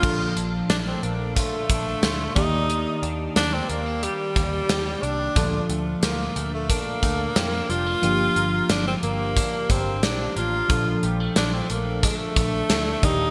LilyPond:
<<
  \new Staff \with { instrumentName = "FM electric piano" } { \time 4/4 \key bes \major \tempo 4 = 90 <bes, f d' a'>2.~ <bes, f d' a'>8 <ees bes g' d''>8~ | <ees bes g' d''>2.~ <ees bes g' d''>8 r8 | <bes, f d' a'>1 | <f bes d' g'>1 |
<bes, f d' a'>2.~ <bes, f d' a'>8 <bes, ees g' d''>8 | }
  \new Staff \with { instrumentName = "Tenor saxophone" } { \time 4/4 \key bes \major f'8 r8 d'16 c'16 bes8 a4. ees'8~ | ees'8 r8 d'16 c'16 bes8 g4. d'8~ | d'8 r8 bes8. a16 bes4. f'8~ | f'4 d'16 c'16 bes4 c'8 d'8 f'8~ |
f'8 r8 d'16 c'16 bes8 a4. ees'8 | }
  \new Staff \with { instrumentName = "Clean electric guitar" } { \time 4/4 \key bes \major f8 d'8 a8 d'8 f'8 d'8 f'8 ees8 | ees8 d'8 bes8 c'16 d'16 g'8 d'8 g'8 d'8 | f8 a8 f8 a8 d'8 a8 c'16 d'16 g16 a16 | f8 bes8 f8 bes8 d'8 bes8 d'8 bes8 |
f8 g16 a16 f8 a8 d'8 a8 d'8 bes8 | }
  \new Staff \with { instrumentName = "Picked electric bass" } { \clef bass \time 4/4 \key bes \major bes,,8 bes,,8 bes,,8 bes,,8. r16 bes,,8 d,8 ees,8~ | ees,8 ees,8 ees,8 ees,8. r16 ees,8 ees,8 c,8 | d,8 d,8 d,8 d,8. r16 d,8 f,8 f,,8 | g,,8 g,,8 g,,8 g,,8. r16 g,,8 bes,,8 a,,8 |
bes,,8 bes,,8 bes,,8 bes,,8. r16 bes,,8 d,8 ees,8 | }
  \new DrumStaff \with { instrumentName = "Drums" } \drummode { \time 4/4 <cymc bd>8 hh8 <hh sn>8 hh8 <hh bd>8 <hh bd>8 <hh sn>8 <hh bd>8 | hh8 hh8 <hh sn>8 hh8 hh8 <hh bd>8 <hh sn>8 hh8 | <hh bd>8 hh8 <hh sn>8 hh8 <hh bd>8 <hh bd>8 <hh sn>8 hh8 | hh8 hh8 <hh sn>8 hh8 <hh bd>8 <hh bd>8 <hh sn>8 hh8 |
<hh bd>8 hh8 <hh sn>8 hh8 <hh bd>8 <hh bd>8 <hh sn>8 <hh bd>8 | }
>>